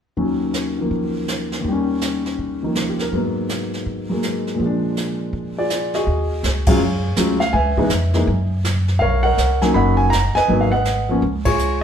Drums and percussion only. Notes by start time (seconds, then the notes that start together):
0.17 brush sweep, kick
0.54 snare, hi-hat pedal
0.90 brush sweep, kick
1.28 snare, hi-hat pedal
1.52 snare
1.65 brush sweep, kick
2.01 snare, hi-hat pedal
2.26 snare
2.39 brush sweep, kick
2.75 snare, hi-hat pedal
2.99 snare
3.12 brush sweep, kick
3.49 snare, hi-hat pedal
3.73 snare
3.86 brush sweep, kick
4.23 snare, hi-hat pedal
4.47 snare
4.60 brush sweep, kick
4.97 snare, hi-hat pedal
5.33 brush sweep, kick
5.70 snare, hi-hat pedal
5.94 snare
6.07 brush sweep, kick
6.44 snare, hi-hat pedal
6.66 kick, ride
6.80 brush sweep
7.16 snare, hi-hat pedal
7.40 snare
7.53 brush sweep, kick
7.77 kick
7.90 snare, hi-hat pedal
8.13 snare
8.27 brush sweep, kick
8.64 snare, hi-hat pedal
8.88 snare
9.01 brush sweep, kick
9.38 snare, hi-hat pedal
9.62 snare
9.75 brush sweep, kick
10.12 snare, hi-hat pedal
10.36 snare
10.49 brush sweep, kick
10.85 snare, hi-hat pedal
11.22 brush sweep, kick
11.45 kick, ride
11.59 hi-hat pedal